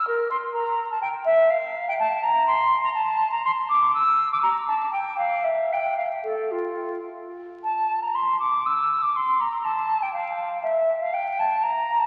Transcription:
X:1
M:3/4
L:1/16
Q:1/4=121
K:Bblyd
V:1 name="Flute"
B2 c'2 b3 a g2 e2 | [K:F] f3 g a2 b2 c'3 b | a3 b c'2 d'2 e'3 d' | b2 a2 g2 f2 e2 g2 |
f2 A2 F4 z4 | a3 b c'2 d'2 e'3 d' | c'2 b2 a3 g f4 | e3 f g2 a2 b3 a |]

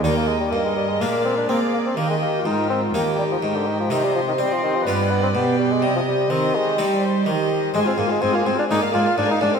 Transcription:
X:1
M:4/4
L:1/16
Q:1/4=125
K:Eb
V:1 name="Violin section"
g4 e4 f4 f4 | g8 g8 | e4 e8 g4 | e4 c8 c4 |
a f a f a f a f a f a f a f a f |]
V:2 name="Violin section"
e4 e4 d4 d4 | e4 B4 B8 | c8 d8 | e4 e4 d2 c2 e4 |
c A c A c A c A d f d f d f d f |]
V:3 name="Viola section"
B4 B8 A4 | G4 F4 G8 | G4 G4 =B4 G4 | G12 G4 |
A F A F A F A F A B A B A B A B |]
V:4 name="Bassoon" clef=bass
G, B, A, G, B, A, G, A, B,2 C D C2 B, C | B, A, B,2 E2 C2 B,2 G, F, E, D, E, F, | E, G, F, E, G, F, E, F, G,2 =B, C B,2 G, A, | G, F, G,2 C2 A,2 G,2 z6 |
A, C B, A, C B, C D E2 F2 D E D C |]
V:5 name="Harpsichord"
[B,E]8 [A,B,D]8 | z8 [B,E]8 | [CE]8 [=B,F]8 | z8 [CE]8 |
C8 [B,D]8 |]
V:6 name="Harpsichord" clef=bass
E,,4 G,,4 B,,4 B,4 | E,4 A,,4 E,,4 A,,4 | C,4 C4 G,,4 =B,,4 | C,4 E,4 G,4 E,4 |
A,,2 A,,2 A,,2 A,,2 A,,2 A,,2 A,,2 A,,2 |]
V:7 name="Cello section" clef=bass
E,,4 G,,4 B,,4 B,4 | E,4 A,,4 E,,4 A,,4 | C,4 C4 G,,4 =B,,4 | C,4 E,4 G,4 E,4 |
A,,2 A,,2 A,,2 A,,2 A,,2 A,,2 A,,2 A,,2 |]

